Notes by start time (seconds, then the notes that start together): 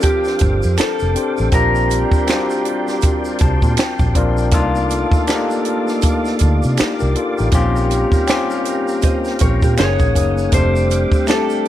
Already playing: F3 C4 D4 F4 G4 A4 A#4 C5 F5 G5 D6
0.01 G4, kick, closed hi-hat, shaker
0.24 snare, shaker
0.39 G1, kick, closed hi-hat, shaker
0.63 F2, shaker
0.77 A4, finger snap, muted fingered electric bass stroke, snare, closed hi-hat, shaker
0.81 finger snap
0.99 F1, shaker
1.15 C4 D4 G4 C5, closed hi-hat
1.37 A1, shaker
1.52 A#1 G3 C4 D4 F4 G4 A#4 D5 C6, kick, closed hi-hat, shaker
1.75 shaker
1.90 closed hi-hat, shaker
2.12 muted fingered electric bass stroke, kick, shaker
2.27 C4 D4 F4 F#4, finger snap, snare, closed hi-hat, shaker
2.30 finger snap
2.36 G4
2.50 shaker
2.65 closed hi-hat
2.88 snare, shaker
3.01 kick, closed hi-hat, shaker
3.25 shaker
3.38 C2 A5, kick, closed hi-hat, shaker
3.62 A#2, kick, shaker
3.77 G5, finger snap, snare, closed hi-hat, shaker
3.80 finger snap
3.99 A#1, kick, shaker
4.15 A#1 C4 D4 F4 A#4 D5, kick, closed hi-hat
4.38 shaker
4.51 C2 A3 A#3 D4 D#4 F4 A4 D5 F5 D6, kick, closed hi-hat, shaker
4.75 shaker
4.90 closed hi-hat, shaker
5.12 muted fingered electric bass stroke, kick, shaker
5.27 A#3 D4 D#4 G4, finger snap, snare, closed hi-hat, shaker
5.30 finger snap
5.50 shaker
5.65 closed hi-hat
5.88 snare, shaker
6.02 kick, closed hi-hat, shaker
6.25 snare, shaker
6.39 D2, kick, closed hi-hat, shaker
6.63 C3, shaker
6.77 D#4 G4, finger snap, muted fingered electric bass stroke, snare, closed hi-hat, shaker
6.81 finger snap
7.00 C2 G4 A#4, shaker
7.15 F4 A4, closed hi-hat
7.38 A1 D#4 G4, shaker
7.51 A#1 G3 A#3 C4 C#4 F4 G4 G5 A#5, kick, closed hi-hat, shaker
7.76 shaker
7.91 closed hi-hat, shaker
8.12 muted fingered electric bass stroke, kick, shaker
8.27 C4 C#4 F4 G4, finger snap, snare, closed hi-hat, shaker
8.30 finger snap
8.50 shaker
8.65 closed hi-hat, shaker
8.88 shaker
9.02 C5 D#5, kick, closed hi-hat, shaker
9.25 snare, shaker
9.39 A#1 A#4 C#5, kick, closed hi-hat, shaker
9.62 A#2 G4 A#4, kick, shaker
9.77 F#1 G#3 A#3 C#4 D#4 G#4 C#5 F#5 G#5 D#6, finger snap, snare, closed hi-hat, shaker
9.81 finger snap
9.99 A#1, kick, shaker
10.14 F#1 A#3 C#4 D#4 G#4, kick, closed hi-hat, shaker
10.38 shaker
10.52 F1 G3 A3 C4 D4 G4 A4 C5 F5 G5 D6, kick, closed hi-hat, shaker
10.76 shaker
10.91 closed hi-hat, shaker
11.12 muted fingered electric bass stroke, kick, shaker
11.27 A3 C4 D4 G4 A4, finger snap, snare, closed hi-hat, shaker
11.31 finger snap
11.50 shaker